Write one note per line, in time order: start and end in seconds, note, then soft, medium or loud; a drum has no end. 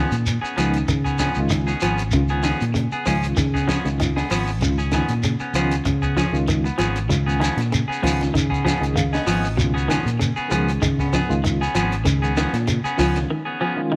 0.00 0.13 D#3 medium
0.00 0.15 F3 medium
0.00 0.15 B3 medium
0.00 0.15 C#4 medium
0.00 0.15 G#4 medium
0.11 0.37 A#2 medium
0.11 closed hi-hat soft
0.11 shekere soft
0.26 closed hi-hat medium
0.26 shekere medium
0.42 0.56 B3 soft
0.42 0.56 C#4 soft
0.42 0.57 G#4 medium
0.42 muted fingered electric bass stroke soft
0.42 shekere soft
0.56 0.83 C#2 medium
0.56 0.92 D#3 medium
0.56 0.77 F3 medium
0.56 0.75 F3 medium
0.56 0.92 G#3 medium
0.56 0.77 B3 medium
0.56 0.77 C#4 medium
0.56 0.92 C#4 medium
0.56 0.92 D#4 medium
0.56 0.77 G#4 medium
0.56 closed hi-hat soft
0.56 shekere medium
0.74 closed hi-hat medium
0.74 shekere soft
0.88 1.28 C#3 medium
0.88 1.06 D#3 medium
0.88 kick medium
0.88 closed hi-hat medium
0.88 shekere medium
1.04 1.18 B3 soft
1.04 1.19 C#4 soft
1.04 1.18 G#4 soft
1.04 kick medium
1.04 shekere soft
1.19 1.39 F3 medium
1.19 1.39 B3 medium
1.19 1.40 C#4 medium
1.19 1.39 G#4 medium
1.19 muted clean electric guitar stroke medium
1.19 kick medium
1.19 snare medium
1.19 closed hi-hat medium
1.19 shekere medium
1.35 1.74 C#2 medium
1.35 1.70 D#3 medium
1.35 1.70 C#4 medium
1.35 shekere soft
1.39 1.71 G#3 medium
1.39 1.71 F4 medium
1.50 1.68 D#3 medium
1.50 snare soft
1.50 closed hi-hat medium
1.50 shekere medium
1.67 1.81 B3 soft
1.67 1.81 C#4 soft
1.67 1.82 G#4 medium
1.67 shekere soft
1.81 2.14 G#1 medium
1.81 2.01 F3 medium
1.81 2.00 F3 medium
1.81 2.02 B3 medium
1.81 2.02 C#4 medium
1.81 2.02 G#4 medium
1.81 closed hi-hat medium
1.81 shekere medium
1.98 closed hi-hat soft
1.98 shekere soft
2.11 2.52 C#2 medium
2.11 2.31 C#3 medium
2.11 2.54 D#3 medium
2.11 2.54 G#3 medium
2.11 2.54 C#4 medium
2.11 kick medium
2.11 closed hi-hat medium
2.11 shekere medium
2.15 2.54 F4 medium
2.29 2.42 B3 medium
2.29 2.43 C#4 soft
2.29 2.43 G#4 medium
2.29 shekere soft
2.43 2.61 D#3 medium
2.43 2.63 F3 medium
2.43 2.63 B3 medium
2.43 2.64 C#4 medium
2.43 2.64 G#4 medium
2.43 snare medium
2.43 closed hi-hat soft
2.43 shekere medium
2.60 2.86 A#2 medium
2.60 closed hi-hat soft
2.60 shekere soft
2.74 2.92 C#3 medium
2.74 closed hi-hat medium
2.74 shekere medium
2.92 3.05 B3 soft
2.92 3.06 G#4 medium
2.92 muted fingered electric bass stroke soft
2.92 shekere soft
3.06 3.32 C#2 medium
3.06 3.40 D#3 medium
3.06 3.23 F3 medium
3.06 3.26 F3 medium
3.06 3.40 G#3 medium
3.06 3.26 C#4 medium
3.06 3.40 C#4 medium
3.06 3.40 F4 medium
3.06 3.26 G#4 medium
3.06 muted clean electric guitar stroke medium
3.06 kick medium
3.06 open hi-hat medium
3.06 shekere medium
3.23 closed hi-hat soft
3.23 shekere soft
3.37 3.77 C#3 medium
3.37 3.55 D#3 medium
3.37 kick medium
3.37 snare soft
3.37 closed hi-hat medium
3.37 shekere medium
3.54 3.67 B3 soft
3.54 3.68 C#4 soft
3.54 3.68 G#4 soft
3.54 kick medium
3.54 snare soft
3.54 shekere soft
3.68 3.85 F3 medium
3.68 3.88 F3 medium
3.68 3.88 B3 medium
3.68 3.88 C#4 medium
3.68 3.88 G#4 medium
3.68 kick medium
3.68 snare medium
3.68 closed hi-hat soft
3.68 shekere medium
3.85 4.22 C#2 medium
3.85 4.18 D#3 medium
3.85 4.18 G#3 medium
3.85 4.18 C#4 medium
3.85 4.18 F4 medium
3.85 closed hi-hat soft
3.85 shekere soft
4.00 4.17 D#3 medium
4.00 closed hi-hat medium
4.00 shekere medium
4.16 4.30 B3 soft
4.16 4.30 G#4 medium
4.16 snare medium
4.16 shekere soft
4.30 4.62 G#1 medium
4.30 4.50 F3 medium
4.30 4.48 F3 medium
4.30 4.50 B3 medium
4.30 4.50 C#4 medium
4.30 4.51 G#4 medium
4.30 open hi-hat medium
4.30 shekere medium
4.47 shekere soft
4.61 5.00 C#2 medium
4.61 4.80 C#3 medium
4.61 5.02 D#3 medium
4.61 5.02 G#3 medium
4.61 5.02 C#4 medium
4.61 5.02 F4 medium
4.61 kick medium
4.61 closed hi-hat medium
4.61 shekere medium
4.78 4.92 C#4 medium
4.78 4.92 G#4 medium
4.78 muted clean electric guitar stroke soft
4.78 shekere soft
4.92 5.11 D#3 medium
4.92 5.12 F3 soft
4.92 5.12 B3 medium
4.92 5.13 C#4 medium
4.92 5.13 G#4 medium
4.92 kick medium
4.92 snare medium
4.92 closed hi-hat soft
4.92 shekere medium
5.09 5.34 A#2 medium
5.09 closed hi-hat soft
5.09 shekere soft
5.23 5.42 C#3 medium
5.23 closed hi-hat medium
5.23 shekere medium
5.40 5.54 B3 soft
5.40 5.55 C#4 medium
5.40 muted clean electric guitar stroke medium
5.40 muted fingered electric bass stroke soft
5.40 shekere soft
5.53 5.79 C#2 medium
5.53 5.88 D#3 medium
5.53 5.74 F3 medium
5.53 5.73 F3 medium
5.53 5.88 G#3 medium
5.53 5.75 B3 medium
5.53 5.88 C#4 medium
5.53 5.75 C#4 medium
5.53 5.88 F4 medium
5.53 5.75 G#4 medium
5.53 closed hi-hat soft
5.53 shekere medium
5.71 closed hi-hat soft
5.71 shekere soft
5.85 6.24 C#3 medium
5.85 muted clean electric guitar stroke medium
5.85 kick medium
5.85 closed hi-hat medium
5.85 shekere medium
6.02 6.16 B3 soft
6.02 6.16 C#4 soft
6.02 6.16 G#4 medium
6.02 kick medium
6.02 shekere soft
6.16 6.36 F3 medium
6.16 6.34 F3 medium
6.16 6.37 C#4 medium
6.16 6.37 G#4 medium
6.16 muted clean electric guitar stroke medium
6.16 kick medium
6.16 snare medium
6.16 closed hi-hat medium
6.16 shekere medium
6.32 6.70 C#2 medium
6.32 6.66 D#3 medium
6.32 6.66 G#3 medium
6.32 6.66 C#4 medium
6.32 6.66 F4 medium
6.32 shekere soft
6.48 6.66 D#3 medium
6.48 closed hi-hat medium
6.48 shekere medium
6.64 6.77 B3 soft
6.64 muted clean electric guitar stroke medium
6.64 shekere soft
6.78 7.10 G#1 medium
6.78 6.96 F3 medium
6.78 6.98 F3 medium
6.78 6.98 B3 medium
6.78 6.98 C#4 medium
6.78 6.98 G#4 medium
6.78 closed hi-hat medium
6.78 shekere medium
6.96 closed hi-hat medium
6.96 shekere soft
7.08 7.49 C#2 medium
7.08 7.27 C#3 medium
7.08 7.49 D#3 medium
7.08 7.50 G#3 medium
7.08 7.50 C#4 medium
7.08 7.50 F4 medium
7.08 kick medium
7.08 closed hi-hat medium
7.08 shekere medium
7.26 7.39 B3 medium
7.26 7.40 C#4 medium
7.26 7.40 G#4 medium
7.26 shekere soft
7.40 7.58 D#3 medium
7.40 7.60 F3 medium
7.40 7.60 B3 medium
7.40 7.61 C#4 medium
7.40 7.61 G#4 medium
7.40 snare medium
7.40 closed hi-hat soft
7.40 shekere medium
7.57 7.82 A#2 medium
7.57 snare soft
7.57 closed hi-hat medium
7.57 shekere soft
7.72 7.90 C#3 medium
7.72 closed hi-hat medium
7.72 shekere medium
7.88 8.02 B3 soft
7.88 8.02 C#4 medium
7.88 8.02 G#4 medium
7.88 muted fingered electric bass stroke soft
7.92 shekere soft
8.02 8.28 C#2 medium
8.02 8.36 D#3 medium
8.02 8.22 F3 medium
8.02 8.21 F3 medium
8.02 8.36 G#3 medium
8.02 8.22 B3 medium
8.02 8.36 C#4 medium
8.02 8.23 C#4 medium
8.02 8.36 F4 medium
8.02 8.23 G#4 medium
8.02 kick medium
8.02 open hi-hat medium
8.06 shekere medium
8.21 snare soft
8.21 closed hi-hat medium
8.21 shekere soft
8.34 8.73 C#3 medium
8.34 8.52 D#3 medium
8.34 kick medium
8.34 closed hi-hat medium
8.34 shekere medium
8.50 8.63 B3 soft
8.50 8.64 C#4 soft
8.50 8.64 G#4 medium
8.50 kick medium
8.50 shekere soft
8.64 8.84 F3 medium
8.64 8.82 F3 medium
8.64 8.84 B3 medium
8.64 8.84 C#4 medium
8.64 8.85 G#4 medium
8.64 kick medium
8.64 snare medium
8.64 closed hi-hat medium
8.64 shekere medium
8.80 9.18 C#2 medium
8.80 9.14 D#3 medium
8.80 9.14 G#3 medium
8.80 9.14 C#4 medium
8.80 9.14 G#4 medium
8.80 closed hi-hat medium
8.80 shekere soft
8.96 9.13 D#3 medium
8.96 9.11 F5 medium
8.96 closed hi-hat medium
8.96 shekere medium
9.12 9.26 B3 soft
9.12 9.27 C#4 medium
9.12 9.27 G#4 medium
9.12 9.54 D#5 medium
9.12 snare medium
9.12 shekere soft
9.27 9.59 G#1 medium
9.27 9.46 F3 medium
9.27 9.44 F3 medium
9.27 9.47 B3 medium
9.27 9.47 C#4 medium
9.27 9.47 G#4 medium
9.27 open hi-hat medium
9.27 shekere medium
9.44 shekere soft
9.56 9.97 C#2 medium
9.56 9.75 B2 medium
9.56 9.97 D#3 medium
9.56 9.98 G#3 medium
9.56 9.98 C#4 medium
9.56 9.97 F4 medium
9.56 kick medium
9.56 closed hi-hat medium
9.56 shekere medium
9.74 9.88 B3 soft
9.74 9.89 C#4 medium
9.74 9.89 G#4 medium
9.74 shekere soft
9.88 10.06 D#3 medium
9.88 10.08 F3 medium
9.88 10.09 B3 medium
9.88 10.09 C#4 medium
9.88 10.09 G#4 medium
9.88 kick medium
9.88 snare medium
9.88 closed hi-hat soft
9.88 shekere medium
10.06 10.31 A#2 medium
10.06 closed hi-hat soft
10.06 shekere soft
10.20 10.37 C#3 medium
10.20 closed hi-hat medium
10.20 shekere medium
10.36 10.50 B3 soft
10.36 10.51 C#4 soft
10.36 10.51 G#4 medium
10.36 muted fingered electric bass stroke soft
10.36 shekere soft
10.49 10.76 C#2 medium
10.49 10.83 D#3 medium
10.49 10.69 F3 medium
10.49 10.71 F3 medium
10.49 10.83 G#3 medium
10.49 10.71 B3 medium
10.49 10.83 C#4 medium
10.49 10.71 C#4 medium
10.49 10.83 G#4 medium
10.49 10.71 G#4 medium
10.49 shekere medium
10.53 closed hi-hat soft
10.68 closed hi-hat soft
10.68 shekere soft
10.82 11.21 C#3 medium
10.82 10.99 D#3 medium
10.82 kick medium
10.82 closed hi-hat medium
10.82 shekere medium
10.99 11.13 B3 soft
10.99 11.13 C#4 soft
10.99 kick medium
10.99 snare soft
10.99 shekere soft
11.13 11.31 F3 medium
11.13 11.33 B3 medium
11.13 11.33 G#4 medium
11.13 muted clean electric guitar stroke medium
11.13 kick medium
11.13 snare medium
11.13 closed hi-hat soft
11.13 shekere medium
11.29 11.67 C#2 medium
11.29 11.62 D#3 medium
11.29 11.62 G#3 medium
11.29 11.62 C#4 medium
11.29 11.62 F4 medium
11.29 shekere soft
11.44 11.61 D#3 medium
11.44 closed hi-hat medium
11.44 shekere medium
11.61 11.74 B3 soft
11.61 11.75 C#4 medium
11.61 11.75 G#4 medium
11.61 shekere soft
11.75 12.06 G#1 medium
11.75 11.92 F3 medium
11.75 11.94 F3 medium
11.75 11.95 B3 medium
11.75 11.95 C#4 medium
11.75 11.95 G#4 medium
11.75 closed hi-hat medium
11.75 shekere medium
11.92 closed hi-hat soft
11.92 shekere soft
12.04 12.45 C#2 medium
12.04 12.23 C#3 medium
12.04 12.45 D#3 medium
12.04 12.45 G#3 medium
12.04 12.45 C#4 medium
12.04 12.46 G#4 medium
12.04 kick medium
12.04 closed hi-hat medium
12.04 shekere medium
12.22 12.36 B3 medium
12.22 12.36 C#4 medium
12.22 12.36 G#4 medium
12.22 shekere soft
12.37 12.55 D#3 medium
12.37 12.56 F3 medium
12.37 12.56 B3 medium
12.37 12.56 C#4 medium
12.37 12.57 G#4 medium
12.37 snare medium
12.37 closed hi-hat soft
12.37 shekere medium
12.53 12.79 A#2 medium
12.53 snare soft
12.53 closed hi-hat medium
12.53 shekere soft
12.67 12.85 C#3 medium
12.67 closed hi-hat medium
12.67 shekere medium
12.84 12.97 B3 medium
12.84 12.98 C#4 medium
12.84 12.99 G#4 medium
12.84 muted fingered electric bass stroke soft
12.84 shekere soft
12.98 13.24 C#2 medium
12.98 13.31 D#3 medium
12.98 13.18 F3 medium
12.98 13.17 F3 medium
12.98 13.32 G#3 medium
12.98 13.18 B3 medium
12.98 13.31 C#4 medium
12.98 13.19 C#4 medium
12.98 13.32 F4 medium
12.98 13.19 G#4 medium
12.98 kick medium
12.98 snare soft
12.98 open hi-hat medium
12.98 shekere medium
13.15 snare soft
13.15 closed hi-hat medium
13.15 shekere soft
13.30 13.48 D#3 medium
13.45 13.60 B3 soft
13.45 13.60 C#4 soft
13.45 13.60 G#4 medium
13.60 13.80 F3 medium
13.60 13.78 F3 medium
13.60 13.80 B3 medium
13.60 13.80 C#4 medium
13.60 13.81 G#4 medium
13.76 13.96 D#3 medium
13.76 13.96 G#3 medium
13.76 13.96 C#4 medium
13.76 13.96 F4 medium
13.92 13.96 D#3 medium